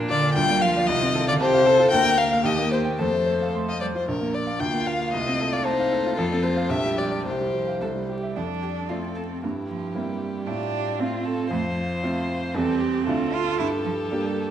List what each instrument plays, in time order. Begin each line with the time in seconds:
Already playing: grand piano A#2 A#3, violin D4
0.09 cello D3, grand piano F4, violin D5
0.22 grand piano D5
0.34 grand piano D2, cello G3, violin F4 G5
0.49 grand piano A#3
0.61 cello F3, grand piano F4, violin F5
0.76 grand piano D5
0.87 grand piano C2, cello D#3, violin D#5
1.01 grand piano C4
1.15 grand piano A4
1.28 cello D3, violin D5, grand piano F5
1.40 cello C3, violin G4 C5, grand piano A5
1.54 grand piano F5
1.66 violin A4, grand piano A4
1.79 grand piano F4
1.91 grand piano D2, cello A#3, violin A#4 G5
2.05 grand piano A#3
2.18 grand piano A#4, violin F5
2.32 grand piano F5
2.44 grand piano D#2, violin G4 D#5
2.58 grand piano A#3
2.71 grand piano C5, violin C5
2.85 grand piano G5
2.99 grand piano F2, cello A3, violin A4 C5
3.13 grand piano A3
3.26 grand piano C5
3.42 grand piano F5
3.54 cello A3, grand piano C6
3.68 violin D#5, grand piano F5
3.81 cello G3, grand piano C5, violin D5
3.95 grand piano F4, violin C5
4.08 grand piano A#1, cello A#3, violin A#4
4.21 grand piano A#3
4.34 grand piano D5, violin D5
4.47 grand piano F5
4.60 grand piano D2, violin F4 G5
4.73 grand piano A#3
4.87 grand piano A#4, violin F5
5.01 grand piano F5
5.12 grand piano C2, cello A3, violin D#5
5.27 grand piano C4
5.41 grand piano A4
5.53 violin D5, grand piano F5
5.64 violin D#4 C5, grand piano A5
5.79 grand piano F5
5.93 grand piano A4
6.06 grand piano F4
6.17 grand piano F2, violin F4 A4
6.32 grand piano C4
6.43 grand piano A4, violin C5
6.57 grand piano F5
6.69 grand piano A#1, cello G3, violin G4 E5
6.83 grand piano G3
6.97 grand piano G4, violin D5
7.11 grand piano D5
7.25 grand piano C2, violin G4 C5
7.40 grand piano G3
7.53 cello F3, grand piano G4
7.67 grand piano F5
7.81 grand piano C2, cello G3, violin A4
7.95 grand piano G3
8.08 violin G4, grand piano G4
8.23 grand piano E5
8.36 grand piano F2, cello D4, violin A4
8.63 violin G4
8.89 grand piano A3 C4 F4, cello C4, violin F4
9.15 violin A4
9.41 grand piano G2, cello A#3, violin E4 G4
9.69 cello F3
9.94 cello G3, grand piano A#3 C4 E4
10.47 grand piano A2, cello D4, violin F4
10.99 grand piano A3 C4 F4, cello C4, violin F4
11.26 violin A4
11.51 grand piano F2, cello A3, violin C5
12.03 grand piano A3 C4 F4
12.54 grand piano E2 G3 C4 G4, cello C4, violin G4 A4
12.81 violin G4
13.06 grand piano D2 A3 D4 F4, violin F4 A4
13.33 cello F4
13.58 grand piano G2, cello E4, violin G4
13.85 cello F3
14.11 cello G3, grand piano A#3 D4 G4